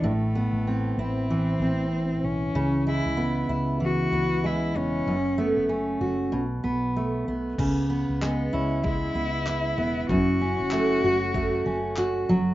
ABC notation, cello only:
X:1
M:4/4
L:1/8
Q:"Swing 16ths" 1/4=96
K:C#m
V:1 name="Cello"
A,3 =C4 ^C- | C E2 z F2 E C- | C B, A,2 z4 | z2 B, C E4 |
F6- F z |]